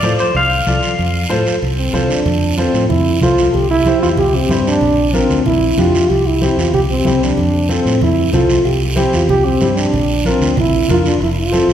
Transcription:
Already playing: D5
0.02 A2 F4 A4 C5, high conga, short guiro
0.19 C5, short guiro
0.34 C2 F5, high conga, long guiro
0.67 C2 F4 A4 D5, high conga, short guiro
0.83 short guiro
0.98 F2, high conga, long guiro
1.29 A2 F4 A4 C5, high conga, short guiro
1.46 short guiro
1.62 C2, high conga, long guiro
1.78 C4
1.93 C2 F4 A4 C5, high conga, low conga, short guiro
2.08 D4, short guiro
2.25 F2, high conga, low conga, long guiro
2.57 C4 F4 A4 C5, high conga, short guiro
2.74 A2, short guiro
2.89 F2 E4, high conga, low conga, long guiro
3.21 C2 F4 A4 C5, high conga, low conga, short guiro
3.38 short guiro
3.51 C2 G4 A4, high conga, low conga, long guiro
3.71 E4
3.85 E4 G4 C5, high conga, short guiro
4.02 E2 F4, short guiro
4.17 C2 G4, high conga, low conga, long guiro
4.35 C4
4.49 G2 E4 G4 C5, high conga, low conga, short guiro
4.67 D4, short guiro
4.81 A#1, high conga, low conga, long guiro
5.13 C4 D4 F4 A#4, high conga, short guiro
5.29 D2, short guiro
5.46 A#1 E4, high conga, low conga, long guiro
5.78 F2 D4 F4 G4, high conga, low conga, short guiro
5.95 short guiro
6.10 C2 G4, high conga, long guiro
6.27 E4
6.41 C4 E4 G4, high conga, short guiro
6.57 E2 F4, short guiro
6.74 C2 G4, high conga, low conga, long guiro
6.90 C4
7.05 C2 C4 E4 G4, high conga, low conga, short guiro
7.23 D4, short guiro
7.38 F2, high conga, low conga, long guiro
7.69 C4 F4 A4, high conga, short guiro
7.86 A2, short guiro
8.01 F2 E4, high conga, low conga, long guiro
8.33 C2 C4 F4 A4, high conga, low conga, short guiro
8.50 short guiro
8.64 C2 G4, high conga, long guiro
8.96 C4 E4 G4, high conga, short guiro
9.13 E2 F4, short guiro
9.29 C2 G4, high conga, low conga, long guiro
9.46 C4
9.61 G2 C4 E4 G4, high conga, short guiro
9.77 D4, short guiro
9.93 A#1, high conga, low conga, long guiro
10.25 C4 D4 F4 A#4, high conga, short guiro
10.40 D2, short guiro
10.56 A#1 E4, high conga, low conga, long guiro
10.88 F2 D4 F4 A#4, high conga, low conga, short guiro
11.06 D4, short guiro
11.20 F1 E4, high conga, long guiro
11.39 F4
11.52 C4 F4 A4, high conga, short guiro
11.68 A1, short guiro

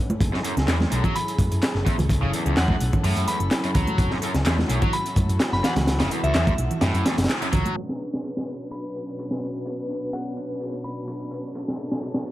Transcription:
Already playing: D3 B3 C#4
0.10 closed hi-hat, high conga
0.20 F#1 F#3 C#4 E4 G#4 A4, kick, closed hi-hat
0.33 F#2, snare
0.44 F#2, closed hi-hat
0.57 C#2, snare, closed hi-hat
0.68 E2, snare, clap, closed hi-hat
0.80 snare, high conga
0.92 B1 F#2, closed hi-hat
1.04 F#3, kick, closed hi-hat, low conga
1.15 B5, closed hi-hat
1.28 closed hi-hat
1.39 F#2, kick, closed hi-hat, high conga
1.52 F#2, closed hi-hat
1.62 snare, clap, closed hi-hat
1.75 F#1, snare
1.86 E2, kick, closed hi-hat
1.98 C#2, closed hi-hat, high conga, low conga
2.09 kick, closed hi-hat
2.22 F#1 C#3
2.33 E2, closed hi-hat
2.46 C#2 E2, closed hi-hat
2.57 E2 F#2 F#5, snare, clap, closed hi-hat
2.68 F#2, kick, high conga
2.80 B1, closed hi-hat
2.93 kick, closed hi-hat, low conga
3.04 F#2 A2, closed hi-hat, open hi-hat
3.17 F#2, closed hi-hat
3.28 E2 B5, closed hi-hat, high conga
3.40 F#1, closed hi-hat
3.51 snare, clap, closed hi-hat
3.64 F#2, closed hi-hat
3.75 C#2 F#3, kick, closed hi-hat, low conga
3.87 closed hi-hat, high conga
3.98 F#1 F#4, kick, closed hi-hat
4.11 F#2, snare
4.22 F#2, closed hi-hat
4.34 C#2, snare, closed hi-hat
4.45 E2, snare, clap, closed hi-hat
4.58 snare, high conga
4.69 B1 F#2, closed hi-hat
4.82 F#3, kick, closed hi-hat, low conga
4.93 B5, closed hi-hat
5.06 closed hi-hat
5.16 F#2, kick, closed hi-hat, high conga
5.29 F#2, closed hi-hat
5.40 snare, clap, closed hi-hat
5.53 F#1 B5, snare
5.64 E2 F#5, snare, closed hi-hat
5.76 C#2, snare, closed hi-hat, high conga, low conga
5.87 snare, closed hi-hat
6.00 F#1 C#3, snare, closed hi-hat
6.11 E2, closed hi-hat
6.23 C#2 E2 E5, closed hi-hat
6.34 E2 F#2 E5, snare, clap, closed hi-hat
6.47 F#2, kick, closed hi-hat, high conga
6.58 B1, closed hi-hat
6.71 closed hi-hat, low conga
6.81 F#2 A2, snare, closed hi-hat
6.94 F#2, closed hi-hat
7.06 E2, snare, closed hi-hat, high conga
7.18 F#1, snare, closed hi-hat
7.24 snare, closed hi-hat
7.29 snare, clap, closed hi-hat
7.42 F#2, closed hi-hat
7.53 C#2 F#3, kick, closed hi-hat, low conga
7.65 closed hi-hat, high conga
7.77 B2 F#3 C#4 D4 B4, closed hi-hat
7.89 snare
8.00 closed hi-hat
8.13 snare
8.24 closed hi-hat
8.37 snare
8.47 closed hi-hat
8.71 B5, closed hi-hat
8.84 closed hi-hat
8.95 closed hi-hat
9.08 closed hi-hat
9.19 closed hi-hat
9.31 snare
9.43 closed hi-hat
9.54 closed hi-hat
9.65 closed hi-hat
9.90 closed hi-hat
10.13 F#5, closed hi-hat
10.37 closed hi-hat
10.60 open hi-hat
10.73 closed hi-hat
10.84 B5, closed hi-hat
11.07 closed hi-hat
11.19 closed hi-hat
11.31 closed hi-hat
11.55 A4, closed hi-hat
11.68 snare
11.78 closed hi-hat
11.91 snare
12.02 closed hi-hat
12.14 snare
12.26 closed hi-hat

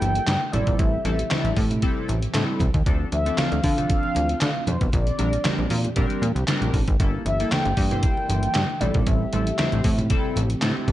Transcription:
Already playing: E3 G3 A#3 E4 A4 G5
0.01 G1, closed hi-hat, high conga
0.15 closed hi-hat
0.27 G2, snare, clap, closed hi-hat, muted conga
0.52 A1 C3 G3 A3 C4 E4 G4 A4 D5, closed hi-hat, high conga, low conga
0.67 A#1, kick, closed hi-hat
0.78 A1 E5, kick, closed hi-hat
1.05 A1 G3 C4 E4 A4, closed hi-hat, high conga
1.19 closed hi-hat
1.30 G3 C4 E4 A4, snare, clap, closed hi-hat, high conga
1.44 A1, closed hi-hat, high conga
1.56 A2, kick, open hi-hat, high conga
1.70 closed hi-hat, low conga
1.82 G3 C4 E4 A4, kick, closed hi-hat, muted conga
2.08 A1, closed hi-hat, high conga
2.22 closed hi-hat
2.34 A2 G3 C4 E4 A4, snare, clap, closed hi-hat
2.60 C2, kick, closed hi-hat, high conga, low conga
2.74 D#2, kick, closed hi-hat
2.86 D2 D3 F3 C4 D4 F4 A4, kick, closed hi-hat
3.12 D2 E5, closed hi-hat, high conga
3.26 F3 C4 D4 A4, closed hi-hat
3.38 F5, snare, clap, closed hi-hat, muted conga, high conga
3.52 D2, closed hi-hat, muted conga, high conga
3.63 D3, kick, open hi-hat, high conga
3.77 F3 C4 D4 A4, closed hi-hat, low conga
3.89 F5, kick, closed hi-hat, muted conga
4.03 muted conga
4.15 D2, closed hi-hat, high conga
4.29 closed hi-hat
4.41 D3, snare, clap, closed hi-hat, muted conga
4.56 muted conga
4.67 F2 C5, closed hi-hat, high conga, low conga
4.81 B1, kick, closed hi-hat
4.92 A#1 D3 G4 D5, kick, closed hi-hat, muted conga
5.07 closed hi-hat
5.18 A#1 G3 C4 D4 A#4, closed hi-hat, high conga
5.33 closed hi-hat
5.44 G3 C4 D4 A#4, snare, clap, closed hi-hat, muted conga, high conga
5.58 A#1, muted conga, high conga
5.70 A#2, open hi-hat, high conga
5.84 closed hi-hat, low conga
5.96 A#1 G3 C4 D4 A#4, kick, closed hi-hat, muted conga
6.10 closed hi-hat, muted conga
6.22 A#2, closed hi-hat, high conga
6.35 C2, closed hi-hat
6.48 G3 C4 D4 A#4, snare, clap, closed hi-hat, muted conga
6.62 A#1, closed hi-hat, muted conga
6.74 A1, kick, open hi-hat, high conga, low conga
6.88 G#1, kick, closed hi-hat
7.00 G1 E3 G3 A#3 E4 A4, kick, closed hi-hat
7.26 G1 E5, closed hi-hat, high conga
7.40 G3 A#3 E4 A4, closed hi-hat
7.51 G5, snare, clap, closed hi-hat, high conga
7.65 G1, closed hi-hat, high conga
7.77 G2, kick, open hi-hat, high conga
7.91 G3 A#3 E4 C5, closed hi-hat, low conga
8.02 G5, kick, closed hi-hat
8.17 muted conga
8.29 G1, closed hi-hat, high conga
8.43 closed hi-hat
8.54 G2, snare, clap, closed hi-hat
8.70 muted conga
8.80 A1 C3 G3 A3 C4 E4 G4 A4 D5, closed hi-hat, high conga, low conga
8.94 A#1, kick, closed hi-hat
9.07 A1 E5, kick, closed hi-hat, muted conga
9.33 A1 G3 C4 E4 A4, closed hi-hat, high conga
9.47 closed hi-hat
9.58 G3 C4 E4 C5, snare, clap, closed hi-hat, muted conga, high conga
9.72 A1, closed hi-hat, muted conga, high conga
9.84 A2, kick, open hi-hat, high conga
9.98 closed hi-hat, low conga
10.10 G3 C4 E4 A4, kick, closed hi-hat
10.36 A1, closed hi-hat, high conga
10.50 closed hi-hat
10.62 A2 G3 C4 E4 A4, snare, clap, closed hi-hat
10.77 muted conga
10.88 C2, kick, closed hi-hat, high conga, low conga

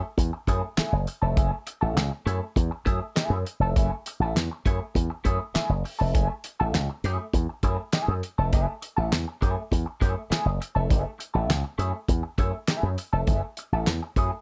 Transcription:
0.03 muted clean electric guitar stroke
0.17 E2, muted clean electric guitar stroke, kick, closed hi-hat
0.33 muted clean electric guitar stroke
0.47 F#2 A3 E4 G#4, kick, closed hi-hat
0.63 muted clean electric guitar stroke
0.77 A3 E4 G#4, muted slap bass stroke, snare, clap, closed hi-hat
0.92 F#1
1.07 muted clean electric guitar stroke, closed hi-hat
1.22 F1 A3 E4 A4
1.37 F#1 A3 E4 G#4, kick, closed hi-hat
1.52 muted clean electric guitar stroke
1.67 muted clean electric guitar stroke, closed hi-hat
1.81 A1 A3 E4 A4
1.97 C#2, snare, clap, closed hi-hat
2.11 muted clean electric guitar stroke
2.26 F#2 A3 E4 G#4, closed hi-hat
2.41 muted clean electric guitar stroke
2.56 E2, muted clean electric guitar stroke, kick, closed hi-hat
2.71 muted clean electric guitar stroke
2.85 F#2 A3 E4 G#4, kick, closed hi-hat
3.01 muted clean electric guitar stroke
3.16 A3 E4 G#4, snare, clap, closed hi-hat
3.30 F#2
3.46 muted clean electric guitar stroke, closed hi-hat
3.60 F1 A3 E4 A4
3.76 F#1 A3 E4 G#4, kick, closed hi-hat
3.92 muted clean electric guitar stroke
4.06 muted clean electric guitar stroke, closed hi-hat
4.20 A1 A3 E4 A4
4.35 E2, snare, clap, closed hi-hat
4.51 muted clean electric guitar stroke
4.66 F#2 A3 E4 G#4, kick, closed hi-hat
4.81 muted clean electric guitar stroke
4.95 E2, muted clean electric guitar stroke, kick, closed hi-hat
5.10 muted clean electric guitar stroke
5.24 F#2 A3 E4 G#4, kick, closed hi-hat
5.40 muted clean electric guitar stroke
5.54 A3 E4 G#4, muted slap bass stroke, snare, clap, closed hi-hat
5.69 F#1
5.85 muted clean electric guitar stroke, open hi-hat
5.99 F1 A3 E4 A4
6.14 F#1 A3 E4 G#4, kick, closed hi-hat
6.29 muted clean electric guitar stroke
6.44 muted clean electric guitar stroke, closed hi-hat
6.60 A1 A3 E4 A4
6.75 C#2, snare, clap, closed hi-hat
6.90 muted clean electric guitar stroke
7.04 F#2 A3 E4 G#4, closed hi-hat
7.19 muted clean electric guitar stroke
7.33 E2, muted clean electric guitar stroke, kick, closed hi-hat
7.49 muted clean electric guitar stroke
7.63 F#2 A3 E4 G#4, kick, closed hi-hat
7.78 muted clean electric guitar stroke
7.92 A3 E4 G#4, snare, clap, closed hi-hat
8.08 F#2
8.23 muted clean electric guitar stroke, closed hi-hat
8.38 F1 A3 E4 A4
8.53 F#1 A3 E4 G#4, kick, closed hi-hat
8.68 muted clean electric guitar stroke
8.82 muted clean electric guitar stroke, closed hi-hat
8.97 A1 A3 E4 A4
9.12 E2, snare, clap, closed hi-hat
9.28 muted clean electric guitar stroke
9.41 F#2 A3 E4 G#4, kick, closed hi-hat
9.57 muted clean electric guitar stroke
9.71 E2, muted clean electric guitar stroke, kick, closed hi-hat
9.86 muted clean electric guitar stroke
10.00 F#2 A3 E4 G#4, kick, closed hi-hat
10.16 muted clean electric guitar stroke
10.30 A3 E4 G#4, muted slap bass stroke, snare, clap, closed hi-hat
10.45 F#1
10.61 muted clean electric guitar stroke, closed hi-hat
10.75 F1 A3 E4 A4
10.90 F#1 A3 E4 G#4, kick, closed hi-hat
11.04 muted clean electric guitar stroke
11.19 muted clean electric guitar stroke, closed hi-hat
11.34 A1 A3 E4 A4
11.50 C#2, snare, clap, closed hi-hat
11.64 muted clean electric guitar stroke
11.78 F#2 A3 E4 G#4, closed hi-hat
11.93 muted clean electric guitar stroke
12.08 E2, muted clean electric guitar stroke, kick, closed hi-hat
12.23 muted clean electric guitar stroke
12.38 F#2 A3 E4 G#4, kick, closed hi-hat
12.53 muted clean electric guitar stroke
12.67 A3 E4 G#4, snare, clap, closed hi-hat
12.83 F#2
12.98 muted clean electric guitar stroke, closed hi-hat
13.13 F1 A3 E4 A4
13.27 F#1 A3 E4 G#4, kick, closed hi-hat
13.43 muted clean electric guitar stroke
13.57 muted clean electric guitar stroke, closed hi-hat
13.72 A1 A3 E4 A4
13.87 E2, snare, clap, closed hi-hat
14.03 muted clean electric guitar stroke
14.16 F#2 A3 E4 G#4, kick, closed hi-hat
14.32 muted clean electric guitar stroke

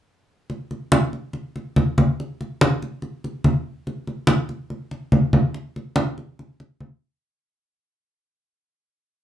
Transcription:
0.50 high conga
0.71 high conga
0.92 high conga
1.13 high conga
1.33 high conga
1.56 high conga
1.76 high conga
1.98 high conga
2.20 high conga
2.41 high conga
2.61 high conga
2.82 high conga
3.02 high conga
3.24 high conga
3.44 high conga
3.87 high conga
4.07 high conga
4.27 high conga
4.49 high conga
4.70 high conga
4.91 high conga
5.12 high conga
5.33 high conga
5.54 high conga
5.76 high conga
5.96 high conga
6.18 high conga
6.39 high conga
6.60 high conga
6.80 high conga

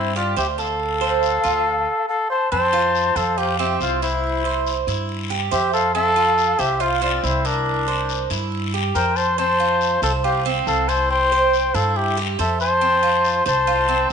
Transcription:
Already playing: G2 C4 E4 C5
0.16 F4 G4 D5
0.36 D2 G4 C5 E5, short guiro
0.58 A4 F5, short guiro
0.80 long guiro
1.01 C5
1.23 short guiro
1.44 D2 F4, short guiro
2.09 A4 F5
2.30 C5 A5
2.51 F2 C4 C5 A5, long guiro
2.73 F4
2.95 short guiro
3.16 F2 A4 C5 F5, short guiro
3.37 F4 G4 C5, long guiro
3.58 C4 G4 E5
3.80 C2 F4 C5, short guiro
4.01 E4 C5, short guiro
4.24 long guiro
4.45 C5
4.67 short guiro
4.87 G2 E4, short guiro
5.09 long guiro
5.30 G4
5.51 F2 G4 C5 E5, short guiro
5.73 A4 F5, short guiro
5.95 C4 A4 F5, long guiro
6.16 F4
6.38 short guiro
6.59 C2 G4 C5 E5, short guiro
6.80 F4 C5, long guiro
7.02 C4 F4 D5
7.23 C2 E4 C5, short guiro
7.45 D4 E4 A#4, short guiro
7.66 long guiro
7.88 C5
8.09 short guiro
8.30 G2 E4, short guiro
8.52 long guiro
8.74 G4
8.95 F2 A#4 C5 G5, short guiro
9.16 C5 A5, short guiro
9.38 C4 C5 A5, long guiro
9.60 F4
9.81 short guiro
10.02 C2 A4 C5 F5, short guiro
10.23 F4 G4 C5, long guiro
10.46 C4
10.67 C2 A4 F5, short guiro
10.88 E4 C5 A5, short guiro
11.09 C5 G5, long guiro
11.32 C5
11.53 short guiro
11.74 G2 E4 A4 F5, short guiro
11.96 G4 E5, long guiro
12.17 G4
12.39 F2 A4 C5 E5, short guiro
12.60 C5 A5, short guiro
12.81 C4, long guiro
13.03 F4
13.25 short guiro
13.46 C2 C5 A5, short guiro
13.67 F4, long guiro
13.89 C4

